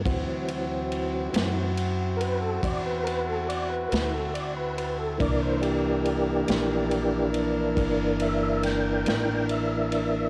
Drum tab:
RD |xxxxxxxxxxxx|xxxxxxxxxxxx|
SD |---o-----o--|---o----oo--|
BD |o-----o-----|o-----o-----|